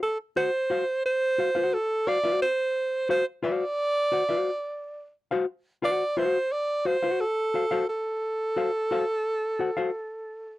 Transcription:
0.03 A4
0.36 F#4 C5 F#5
0.70 F#4 C5 F5
1.06 C5
1.38 F#4 C5 F5
1.55 F#4 C5 F#5
1.74 A4
2.07 F#4 C5 D5 F5
2.24 F#4 C5 F5
2.42 C5
3.09 F#4 C5 F5
3.43 F#4 C5 D5 F5
4.12 F#4 C5 F#5
4.29 F#4 C5 F5
5.31 F#4 C5 F5
5.82 F#4 C5 D5 F#5
6.17 F#4 C5 F5
6.52 D5
6.85 F#4 C5 F5
7.03 F#4 C5 F#5
7.20 A4
7.54 F#4 C5 F5
7.71 F#4 C5 F5
7.89 A4
8.56 F#4 C5 F5
8.91 F#4 C5 F5
9.59 F#4 C5 F#5
9.77 F#4 C5 F5

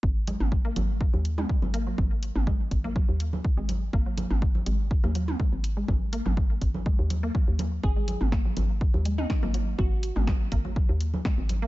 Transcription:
0.03 G#1, kick
0.27 G#3, closed hi-hat, high conga
0.40 G#1, mid tom
0.52 kick
0.65 A#3
0.76 G#1 F#3, closed hi-hat, high conga
1.01 kick
1.14 D#2, high conga
1.25 closed hi-hat
1.38 G#3, mid tom
1.49 kick
1.62 G#1, high conga
1.74 A#3, closed hi-hat
1.87 F#3
1.98 G#1, kick, high conga
2.23 closed hi-hat
2.36 G#1, mid tom
2.47 G#3, kick, high conga
2.71 G#1, kick, closed hi-hat
2.84 A#3, high conga
2.96 F#3, kick
3.09 D#2
3.20 closed hi-hat
3.33 high conga
3.45 kick
3.57 G#1 G#3
3.69 closed hi-hat, high conga
3.93 G#1 A#3, kick
4.06 F#3
4.18 closed hi-hat, high conga
4.31 G#1, mid tom
4.42 kick
4.55 high conga
4.66 G#1 G#3, closed hi-hat
4.91 kick
5.04 D#2 A#3, high conga
5.15 F#3, closed hi-hat
5.28 mid tom
5.39 kick, high conga
5.53 G#1
5.64 closed hi-hat
5.77 G#3
5.88 G#1, kick, high conga
6.13 A#3, closed hi-hat
6.26 G#1 F#3, mid tom, high conga
6.37 kick
6.62 G#1, kick, closed hi-hat
6.74 high conga
6.86 G#3, kick
6.99 D#2
7.10 closed hi-hat, high conga
7.23 A#3
7.35 F#3, kick
7.48 D#2
7.59 closed hi-hat, high conga
7.83 G#1 G#4, kick
7.96 G#3
8.08 closed hi-hat, high conga
8.21 G#1, mid tom
8.32 A#3, kick, snare
8.45 F#3
8.57 G#1, closed hi-hat, high conga
8.81 kick
8.94 D#2, high conga
9.05 G#3, closed hi-hat
9.18 D#4, mid tom
9.30 kick, snare
9.43 G#1 A#3, high conga
9.54 F#3, closed hi-hat
9.78 G#1 F#4, kick, high conga
10.03 closed hi-hat
10.16 G#1 G#3, mid tom
10.27 kick, snare, high conga
10.52 G#1 A#3, kick, closed hi-hat
10.65 F#3, high conga
10.76 kick
10.89 D#2
11.01 closed hi-hat
11.14 high conga
11.25 G#3, kick, snare
11.38 G#1
11.49 closed hi-hat, high conga
11.62 A#3

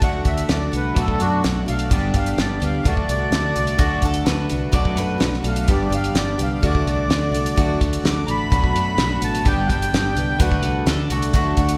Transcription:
Already playing: D4 F#4 A4 F#5
0.01 D2 D3 F#3 A3 D4 F#4 F#5, kick, closed hi-hat
0.25 D2 A3 D4 F#4 E5, kick, closed hi-hat
0.37 closed hi-hat
0.48 D2 F#3 A3 D4 F#4 D5, snare, closed hi-hat
0.72 C2 A3 D4 F#4, closed hi-hat
0.76 B4
0.95 B1 B2 F#3 A3 B3 D4 F#4 D5, kick, closed hi-hat
1.00 A4
1.08 kick
1.19 F#2 A3 D4 F#4, closed hi-hat
1.42 B1 F#3 A3 D4 F#4, snare, closed hi-hat
1.66 B1 A3 D4 F#4 F5, closed hi-hat
1.79 closed hi-hat
1.89 G1 G2 D3 G3 B3 D4 G4, kick, closed hi-hat
1.93 D5
2.14 G1 G3 B3 D4 G4 F5, kick, closed hi-hat
2.26 closed hi-hat
2.37 G1 G3 B3 D4 G4 D5, snare, closed hi-hat
2.60 D2 G3 B3 D4 G4, closed hi-hat
2.65 F5
2.83 D2 D3 F#3 A3 D4 F#4 D5, kick, closed hi-hat
2.88 D5
2.97 kick
3.08 C2 A3 D4 F#4 D5, closed hi-hat
3.31 D2 F#3 A3 D4, snare, closed hi-hat
3.35 F#4
3.55 C2 A3 D4 F#4, closed hi-hat
3.67 closed hi-hat
3.79 D2 D3 F#3 A3 D4 F#4, kick, closed hi-hat
4.02 D2 A3 D4 F#4 A4, kick, closed hi-hat
4.14 closed hi-hat
4.25 D2 F#3 A3 D4 F#4 B4, snare, closed hi-hat
4.49 C2 A3 D4 F#4, closed hi-hat
4.72 B1 B2 F#3 A3 D4 F#4 B4 D5, kick, closed hi-hat
4.85 kick
4.96 F#2 A3 D4 F#4 B4, closed hi-hat
5.18 B1 F#3 A3 D4 F#4, snare, closed hi-hat
5.33 snare
5.43 B1 A3 D4 F#4, closed hi-hat
5.48 F5
5.56 closed hi-hat
5.64 G2 D3 G3 B3 G4 D5, closed hi-hat
5.68 G1 B3 D4 G4 D5, kick
5.89 G1 G3 B3 D4 G4, closed hi-hat
5.94 F5
6.04 closed hi-hat
6.14 G1 G3 B3 D4 G4 D5, snare, closed hi-hat
6.38 C2 G3 B3 D4 G4, closed hi-hat
6.42 F5
6.61 D2 D3 F#3 A3 D4 F#4, kick, closed hi-hat
6.65 D5
6.75 kick
6.85 C2 A3 D4 F#4 D5, closed hi-hat
7.08 D2 F#3 A3 D4, snare, closed hi-hat
7.12 F#4
7.31 C2 A3 D4 F#4, closed hi-hat
7.46 closed hi-hat
7.56 D2 D3 F#3 A3 D4 F#4, kick, closed hi-hat
7.80 D2 A3 D4 F#4, kick, closed hi-hat
7.93 closed hi-hat
8.03 D2 F#3 A3 D4 D6, snare, closed hi-hat
8.07 F#4
8.26 A1 A3 D4 F#4 A#5, closed hi-hat
8.31 B5
8.48 B1 B2 F#3 A3 D4 B4, kick, closed hi-hat
8.52 F#4
8.64 kick
8.75 F#2 A3 D4 F#4, closed hi-hat
8.97 B1 F#3 A3 D4 F#4, snare, closed hi-hat
9.21 A1 A3 D4 F#4 A5, closed hi-hat
9.35 closed hi-hat
9.45 G1 G2 D3 G3 B3 D4 G4 D5 G5, kick, closed hi-hat
9.66 G1 G4 F#5, kick, closed hi-hat
9.71 G3 B3 D4 G5
9.82 closed hi-hat
9.92 G1 G3 B3 D4 G4, snare, closed hi-hat
10.15 C2 G3 B3 D4 G4, closed hi-hat
10.39 D2 D3 F#3 A3 D4 F#4 B4, kick, closed hi-hat
10.52 kick
10.62 C2 D4 F#4, closed hi-hat
10.66 A3
10.86 D2 F#3 A3 D4 F#4 A4, snare, closed hi-hat
11.10 C2 A3 D4 F#4, closed hi-hat
11.22 closed hi-hat
11.33 D2 D3 F#3 A3 D4 F#4, kick, closed hi-hat
11.57 D2 A3 D4 F#4, kick, closed hi-hat
11.69 closed hi-hat

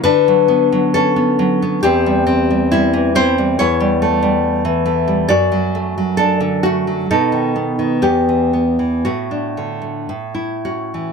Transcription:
0.04 D3 D4 B4
0.28 F#3
0.48 B3
0.72 F#3
0.94 C#4 A4
1.16 B3
1.39 F#3
1.62 B3
1.83 E2 C4 G4
2.06 G3
2.27 C4
2.50 G3
2.72 G3 E4
2.94 E3
3.15 C4 E4 C5
3.38 G3
3.59 E2 E4 C#5
3.80 G3
4.02 A3
4.22 G3
4.65 E3
4.86 A3
5.08 G3
5.29 F#2 F#4 D5
5.52 F#3
5.75 A3
5.98 F#3
6.17 D4 A4
6.40 D3
6.63 A3 F#4
6.87 F#3
7.11 B2 D#4 A4
7.32 D#3
7.56 B3
7.79 D#3
8.02 E2 B3 G4
8.29 E3
8.53 B3
8.79 E3
9.05 A2 A3 F#4
9.31 D4
9.57 D3
9.82 A3
10.09 A2
10.35 E4
10.65 C#4 F#4
10.94 E3

